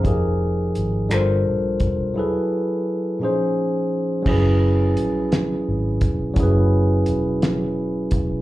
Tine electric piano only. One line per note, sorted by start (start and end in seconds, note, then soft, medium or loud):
0.03 1.09 F3 medium
0.03 1.09 D#4 medium
0.03 1.10 G4 medium
0.07 1.11 G#4 medium
0.07 1.11 A#4 medium
1.09 2.15 G3 medium
1.09 2.15 D4 medium
1.09 2.16 F4 medium
1.09 2.16 A4 medium
1.09 2.16 A#4 medium
1.14 2.17 C5 medium
2.14 3.20 F#3 medium
2.14 3.21 E4 medium
2.14 3.21 G#4 medium
2.14 3.22 A4 medium
2.19 3.23 B4 medium
3.19 4.25 A#2 medium
3.19 4.26 F3 medium
3.19 4.23 C#4 medium
3.19 4.27 D#4 medium
3.19 4.27 G#4 medium
3.24 4.28 C5 medium
4.22 6.31 F#3 medium
4.22 6.32 C#4 medium
4.27 6.33 E4 medium
4.27 6.34 G#4 medium
4.31 6.35 B4 medium
6.34 8.41 F#3 medium
6.34 8.42 C#4 medium
6.38 8.42 E4 medium
6.38 8.42 G#4 medium
6.43 8.42 B4 medium